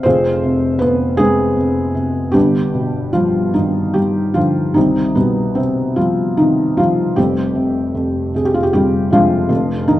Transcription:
felt piano
0.03 F1 F2 C4 F4 G#4 C5
0.44 C3
0.79 F2 B3 B4
1.17 C3 G#3 C4 G#4
1.57 F2
1.95 C3
2.32 G1 G2 G3 B3 D4 G4
2.75 B2
3.13 F3 G3 F4
3.54 G2 D#3 D#4
3.94 G3 G4
4.34 D3 F3 F4
4.74 C2 D#3 G3 C4 D#4
5.15 B2 G3 B3
5.55 C3 C4
5.96 F3 G3 F4
6.37 C3 D#3 D#4
6.77 F3 G3 F4
7.16 F1 F2 G3 C4 G4
7.55 C3
7.95 F2
8.34 C3 G#4
8.45 G4
8.54 F4
8.63 G4
8.73 F2 G3 G4
9.11 C3 F3 G#3 D4 F4
9.49 F1 F2
9.88 D#3 D#4

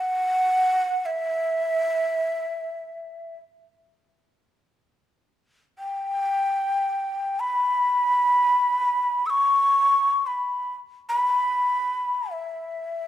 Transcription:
shakuhachi
Already playing: F#5
1.06 E5
5.79 G5
7.40 B5
9.26 C#6 E6
10.26 B5
11.09 B5
12.31 E5

